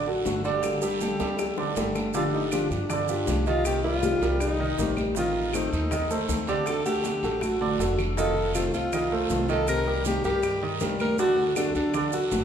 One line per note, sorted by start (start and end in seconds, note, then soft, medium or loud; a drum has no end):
0.00 0.22 A1 medium
0.06 0.38 F#3 medium
0.06 0.38 F#4 medium
0.06 0.44 F#4 medium
0.06 0.39 A4 medium
0.06 high bongo soft
0.06 high conga soft
0.25 1.14 G1 medium
0.25 0.44 D3 medium
0.25 0.44 A3 medium
0.25 0.43 D4 medium
0.25 0.43 F#4 medium
0.25 high bongo soft
0.25 low bongo medium
0.25 high conga medium
0.25 short guiro medium
0.25 maracas medium
0.44 0.76 D3 medium
0.44 0.63 A3 soft
0.44 0.62 D4 soft
0.44 0.76 D4 medium
0.44 0.63 F#4 soft
0.44 1.92 G4 medium
0.44 0.76 D5 medium
0.44 high bongo soft
0.44 high conga soft
0.44 short guiro medium
0.44 maracas soft
0.62 0.81 D3 medium
0.62 0.82 G3 medium
0.62 0.82 A#3 medium
0.62 0.82 D4 medium
0.62 0.81 A4 medium
0.62 high bongo medium
0.62 high conga soft
0.62 long guiro medium
0.62 claves medium
0.62 maracas medium
0.82 1.13 G3 medium
0.82 1.00 A#3 soft
0.82 1.00 D4 soft
0.82 1.13 G4 medium
0.82 1.00 A4 soft
0.82 1.14 A4 medium
0.82 high conga soft
0.82 maracas medium
1.00 1.19 D3 medium
1.00 1.19 G3 medium
1.00 1.19 A#3 medium
1.00 1.19 D4 medium
1.00 1.18 A4 medium
1.00 high bongo medium
1.00 high conga medium
1.00 short guiro medium
1.00 maracas medium
1.19 1.73 D2 medium
1.19 1.51 G3 medium
1.19 1.37 A#3 soft
1.19 1.37 D4 soft
1.19 1.51 G4 medium
1.19 1.38 A4 soft
1.19 1.51 A4 medium
1.19 high bongo loud
1.19 high conga soft
1.19 short guiro medium
1.19 maracas soft
1.38 muted nylon-string guitar stroke medium
1.38 high bongo medium
1.38 high conga soft
1.38 long guiro medium
1.38 claves medium
1.38 maracas medium
1.58 1.73 D3 medium
1.58 1.74 D4 medium
1.58 1.74 D5 medium
1.58 low bongo loud
1.58 high conga soft
1.76 2.65 G1 medium
1.76 1.95 D3 medium
1.76 1.95 G3 medium
1.76 2.08 G3 medium
1.76 1.95 A#3 medium
1.76 1.95 D4 medium
1.76 2.08 G4 medium
1.76 2.08 A4 medium
1.76 1.94 A4 medium
1.76 low bongo medium
1.76 high conga medium
1.76 short guiro medium
1.76 maracas medium
1.95 2.14 A#3 soft
1.95 2.14 D4 soft
1.95 2.14 A4 soft
1.95 low bongo medium
1.95 high conga medium
1.95 short guiro medium
1.95 claves medium
1.95 maracas soft
2.14 2.32 D3 medium
2.14 2.46 D3 medium
2.14 2.33 F3 medium
2.14 2.33 A#3 medium
2.14 2.46 D4 medium
2.14 2.32 D4 medium
2.14 2.23 F4 medium
2.14 2.32 G4 medium
2.14 2.46 D5 medium
2.14 high bongo medium
2.14 long guiro medium
2.14 maracas medium
2.33 2.52 A#3 soft
2.33 2.52 D4 soft
2.33 2.53 D#4 medium
2.33 2.51 G4 soft
2.33 high conga soft
2.52 2.70 D3 medium
2.52 2.83 F3 medium
2.52 2.70 F3 medium
2.52 2.71 A#3 medium
2.52 2.70 D4 medium
2.52 2.71 D4 medium
2.52 2.83 F4 medium
2.52 2.84 G4 medium
2.52 2.70 G4 medium
2.52 high bongo medium
2.52 high conga medium
2.52 short guiro medium
2.52 claves medium
2.52 maracas medium
2.70 3.23 G2 medium
2.70 2.89 A#3 soft
2.70 3.49 D4 medium
2.70 2.89 D4 soft
2.70 2.89 G4 soft
2.70 high bongo soft
2.70 high conga soft
2.70 short guiro medium
2.70 maracas soft
2.90 3.05 D3 medium
2.90 3.06 D4 medium
2.90 3.06 D5 medium
2.90 muted nylon-string guitar stroke medium
2.90 high bongo medium
2.90 high conga soft
2.90 low conga medium
2.90 long guiro medium
2.90 claves medium
2.90 maracas medium
3.08 3.40 F3 medium
3.08 3.40 F4 medium
3.08 3.40 G4 medium
3.08 high bongo soft
3.08 high conga soft
3.08 maracas medium
3.27 4.16 C2 loud
3.27 3.45 D3 medium
3.27 3.46 F3 medium
3.27 3.46 A#3 medium
3.27 3.46 D4 medium
3.27 3.45 G4 medium
3.27 high bongo soft
3.27 low bongo medium
3.27 high conga medium
3.27 short guiro medium
3.27 maracas medium
3.46 3.78 D#3 medium
3.46 3.65 A#3 soft
3.46 3.65 D4 soft
3.46 3.78 D#4 medium
3.46 3.65 F4 medium
3.46 3.65 G4 soft
3.46 3.78 D#5 medium
3.46 high bongo soft
3.46 short guiro medium
3.46 maracas soft
3.65 3.83 C3 medium
3.65 3.84 D#3 medium
3.65 3.84 A#3 medium
3.65 3.83 C4 medium
3.65 3.83 G4 medium
3.65 3.82 G4 medium
3.65 high bongo medium
3.65 high conga soft
3.65 long guiro medium
3.65 claves medium
3.65 maracas medium
3.84 4.15 G3 medium
3.84 4.02 A#3 soft
3.84 4.02 C4 soft
3.84 4.37 F4 medium
3.84 4.02 G4 soft
3.84 4.15 G4 medium
3.84 4.16 A#4 medium
3.84 high conga soft
4.03 4.21 C3 medium
4.03 4.21 D#3 medium
4.03 4.21 A#3 medium
4.03 4.21 C4 medium
4.03 4.20 G4 medium
4.03 high bongo medium
4.03 high conga loud
4.03 short guiro medium
4.03 maracas medium
4.21 4.74 C2 medium
4.21 4.53 G3 medium
4.21 4.39 C4 soft
4.21 4.53 G4 medium
4.21 4.53 A#4 medium
4.21 high bongo soft
4.21 short guiro medium
4.21 maracas soft
4.40 4.94 D#4 loud
4.40 muted nylon-string guitar stroke medium
4.40 high bongo medium
4.40 high conga soft
4.40 long guiro medium
4.40 claves medium
4.40 maracas medium
4.59 4.75 D#3 medium
4.59 4.75 D#4 medium
4.59 4.76 D#5 medium
4.59 high bongo soft
4.59 high conga soft
4.78 5.66 A1 loud
4.78 4.96 C3 medium
4.78 4.96 D#3 medium
4.78 5.10 G3 medium
4.78 4.97 A#3 medium
4.78 4.97 C4 medium
4.78 4.96 G4 medium
4.78 5.10 G4 medium
4.78 5.10 A#4 medium
4.78 high bongo soft
4.78 low bongo medium
4.78 high conga medium
4.78 short guiro medium
4.78 maracas medium
4.96 5.16 A#3 soft
4.96 5.16 C4 soft
4.96 5.15 G4 soft
4.96 high bongo soft
4.96 high conga medium
4.96 short guiro medium
4.96 claves medium
4.96 maracas soft
5.15 5.34 D#3 medium
5.15 5.47 D#3 medium
5.15 5.34 A3 medium
5.15 5.33 C4 medium
5.15 5.47 D#4 medium
5.15 5.56 F4 medium
5.15 5.48 D#5 medium
5.15 high bongo medium
5.15 high conga soft
5.15 long guiro medium
5.15 maracas medium
5.34 5.53 A3 soft
5.34 5.53 C4 soft
5.34 high conga soft
5.53 5.72 D#3 medium
5.53 5.85 A3 medium
5.53 5.72 A3 medium
5.53 5.71 C4 medium
5.53 5.72 D#4 medium
5.53 5.85 A4 medium
5.53 5.85 C5 medium
5.53 high bongo medium
5.53 high conga medium
5.53 short guiro medium
5.53 claves medium
5.53 maracas medium
5.72 6.25 D#2 medium
5.72 5.91 A3 soft
5.72 5.91 C4 medium
5.72 6.18 D#4 medium
5.72 high bongo soft
5.72 high conga soft
5.72 short guiro medium
5.72 maracas soft
5.91 6.07 D#3 medium
5.91 6.07 D#4 medium
5.91 6.07 D#5 medium
5.91 muted nylon-string guitar stroke medium
5.91 high bongo medium
5.91 high conga soft
5.91 low conga medium
5.91 long guiro medium
5.91 claves medium
5.91 maracas medium
6.10 6.41 A3 medium
6.10 6.41 A4 medium
6.10 6.42 C5 medium
6.10 high bongo soft
6.10 high conga soft
6.10 maracas medium
6.29 7.17 D2 medium
6.29 6.47 D#3 medium
6.29 6.48 A3 medium
6.29 6.47 C4 medium
6.29 high bongo soft
6.29 low bongo medium
6.29 high conga medium
6.29 short guiro medium
6.29 maracas medium
6.47 6.79 D3 medium
6.47 6.66 A3 soft
6.47 6.66 C4 medium
6.47 6.79 D4 medium
6.47 6.68 G4 medium
6.47 6.79 D5 medium
6.47 high bongo soft
6.47 high conga soft
6.47 short guiro medium
6.47 maracas soft
6.66 6.85 D3 medium
6.66 6.85 A3 medium
6.66 6.85 D4 medium
6.66 6.84 F#4 medium
6.66 6.85 A4 loud
6.66 high bongo medium
6.66 high conga soft
6.66 long guiro medium
6.66 claves medium
6.66 maracas medium
6.86 7.17 A3 medium
6.86 7.04 A3 soft
6.86 7.04 D4 soft
6.86 7.04 F#4 soft
6.86 7.43 G4 medium
6.86 7.17 A4 medium
6.86 7.17 F#5 medium
6.86 high conga soft
6.86 maracas medium
7.04 7.23 D3 medium
7.04 7.23 A3 medium
7.04 7.23 D4 medium
7.04 7.22 F#4 medium
7.04 high bongo medium
7.04 high conga medium
7.04 short guiro medium
7.04 maracas medium
7.23 7.75 A1 medium
7.23 7.54 F#3 medium
7.23 7.42 A3 soft
7.23 7.42 D4 soft
7.23 7.41 F#4 soft
7.23 7.54 F#4 medium
7.23 7.55 A4 medium
7.23 high bongo soft
7.23 high conga soft
7.23 short guiro medium
7.23 maracas soft
7.41 7.99 F#4 loud
7.41 muted nylon-string guitar stroke medium
7.41 high bongo medium
7.41 high conga medium
7.41 long guiro medium
7.41 claves medium
7.41 maracas medium
7.61 7.76 D3 medium
7.61 7.77 D4 medium
7.61 7.77 D5 medium
7.61 high bongo soft
7.61 high conga medium
7.79 8.68 F1 medium
7.79 7.98 D3 medium
7.79 8.11 F#3 medium
7.79 7.98 A3 medium
7.79 7.98 D4 medium
7.79 8.11 F#4 medium
7.79 7.97 F#4 medium
7.79 8.11 A4 medium
7.79 high bongo soft
7.79 low bongo medium
7.79 short guiro medium
7.79 maracas medium
7.98 8.17 A3 soft
7.98 8.17 D4 soft
7.98 8.17 F#4 soft
7.98 high bongo soft
7.98 low conga medium
7.98 short guiro medium
7.98 claves medium
7.98 maracas soft
8.17 8.36 C3 medium
8.17 8.48 D#3 medium
8.17 8.36 D#3 medium
8.17 8.36 A3 medium
8.17 8.36 C4 medium
8.17 8.49 D#4 medium
8.17 8.35 F4 medium
8.17 8.52 A4 medium
8.17 8.49 D#5 medium
8.17 high bongo medium
8.17 high conga soft
8.17 long guiro medium
8.17 maracas medium
8.37 8.54 A3 soft
8.37 8.55 C4 soft
8.37 high conga soft
8.55 8.73 C3 medium
8.55 8.73 D#3 medium
8.55 8.86 A3 medium
8.55 8.73 A3 medium
8.55 8.73 C4 medium
8.55 8.72 F4 medium
8.55 8.86 A4 medium
8.55 8.86 C5 medium
8.55 high bongo medium
8.55 high conga medium
8.55 short guiro medium
8.55 claves medium
8.55 maracas medium
8.73 9.26 C2 medium
8.73 8.91 A3 soft
8.73 8.91 C4 soft
8.73 8.91 F4 soft
8.73 9.51 F4 loud
8.73 high bongo soft
8.73 high conga soft
8.73 short guiro medium
8.73 maracas soft
8.92 9.08 D#3 medium
8.92 9.09 D#4 medium
8.92 9.09 D#5 medium
8.92 muted nylon-string guitar stroke medium
8.92 high bongo medium
8.92 high conga soft
8.92 low conga medium
8.92 long guiro medium
8.92 claves medium
8.92 maracas medium
9.12 9.43 A3 medium
9.12 9.43 A4 medium
9.12 9.43 C5 medium
9.12 high bongo soft
9.12 high conga soft
9.29 10.19 C2 loud
9.29 9.48 C3 medium
9.29 9.48 D#3 medium
9.29 9.48 A3 medium
9.29 9.49 C4 medium
9.29 9.48 F4 medium
9.29 high bongo soft
9.29 low bongo medium
9.29 high conga medium
9.29 short guiro medium
9.29 maracas medium
9.49 9.80 D#3 medium
9.49 9.68 A3 soft
9.49 9.67 C4 soft
9.49 9.80 D#4 medium
9.49 9.67 F4 soft
9.49 9.68 A4 medium
9.49 9.81 D#5 medium
9.49 high bongo soft
9.49 short guiro medium
9.49 maracas soft
9.67 9.86 C3 medium
9.67 9.86 D#3 medium
9.67 9.86 A#3 medium
9.67 9.86 C4 medium
9.67 9.85 G4 medium
9.67 10.03 A#4 loud
9.67 high bongo medium
9.67 high conga soft
9.67 long guiro medium
9.67 claves medium
9.67 maracas medium
9.86 10.18 G3 medium
9.86 10.05 A#3 soft
9.86 10.05 C4 soft
9.86 10.05 G4 medium
9.86 10.18 G4 medium
9.86 10.18 A#4 medium
9.86 high conga soft
10.05 10.24 C3 medium
10.05 10.24 D#3 medium
10.05 10.24 A#3 medium
10.05 10.24 C4 medium
10.05 10.23 G4 medium
10.05 10.24 G4 medium
10.05 high bongo medium
10.05 high conga loud
10.05 short guiro medium
10.05 maracas medium
10.24 10.77 G2 medium
10.24 10.56 G3 medium
10.24 10.42 A#3 soft
10.24 10.42 C4 soft
10.24 10.70 G4 loud
10.24 10.56 G4 medium
10.24 10.56 A#4 medium
10.24 high bongo soft
10.24 high conga soft
10.24 short guiro medium
10.24 maracas soft
10.43 muted nylon-string guitar stroke medium
10.43 high bongo medium
10.43 high conga soft
10.43 long guiro medium
10.43 claves medium
10.43 maracas medium
10.62 10.78 D#3 medium
10.62 10.78 D#4 medium
10.62 10.78 D#5 medium
10.62 high bongo soft
10.62 high conga soft
10.80 11.69 D2 medium
10.80 10.99 C3 medium
10.80 10.99 D#3 medium
10.80 11.12 G3 medium
10.80 10.99 A#3 medium
10.80 10.98 C4 medium
10.80 10.98 G4 medium
10.80 11.12 G4 medium
10.80 11.12 A#4 medium
10.80 high bongo soft
10.80 low bongo medium
10.80 high conga medium
10.80 short guiro medium
10.80 maracas medium
10.99 11.18 A#3 soft
10.99 11.18 C4 soft
10.99 11.18 G4 soft
10.99 11.18 A#4 loud
10.99 high bongo soft
10.99 high conga medium
10.99 short guiro medium
10.99 claves medium
10.99 maracas soft
11.18 11.36 D3 medium
11.18 11.50 D3 medium
11.18 11.37 A3 medium
11.18 11.37 D4 medium
11.18 11.50 D4 medium
11.18 11.36 F#4 medium
11.18 11.54 F#4 loud
11.18 11.50 D5 medium
11.18 high bongo medium
11.18 high conga soft
11.18 long guiro medium
11.18 maracas medium
11.37 11.55 A3 soft
11.37 11.55 D4 soft
11.37 11.55 F#4 medium
11.37 high conga soft
11.56 11.74 D3 medium
11.56 11.88 F#3 medium
11.56 11.75 A3 medium
11.56 11.74 D4 medium
11.56 11.74 F#4 medium
11.56 11.88 F#4 medium
11.56 11.88 A4 medium
11.56 high bongo medium
11.56 high conga medium
11.56 short guiro medium
11.56 claves medium
11.56 maracas medium
11.75 12.28 D2 medium
11.75 11.93 A3 soft
11.75 11.93 D4 soft
11.75 12.11 D4 medium
11.75 11.93 F#4 soft
11.75 high bongo soft
11.75 high conga soft
11.75 short guiro medium
11.75 maracas soft
11.94 12.10 D3 medium
11.94 12.10 D4 medium
11.94 12.10 D5 medium
11.94 muted nylon-string guitar stroke medium
11.94 high bongo medium
11.94 high conga soft
11.94 low conga medium
11.94 long guiro medium
11.94 claves medium
11.94 maracas medium
12.12 12.44 F#3 medium
12.12 12.44 F#4 loud
12.12 12.44 F#4 medium
12.12 12.44 A4 medium
12.12 high bongo soft
12.12 high conga soft
12.12 maracas medium
12.31 12.44 G1 medium
12.31 12.44 D3 medium
12.31 12.44 A3 medium
12.31 12.44 D4 medium
12.31 12.44 F#4 medium
12.31 high bongo soft
12.31 low bongo medium
12.31 high conga medium
12.31 short guiro medium
12.31 maracas medium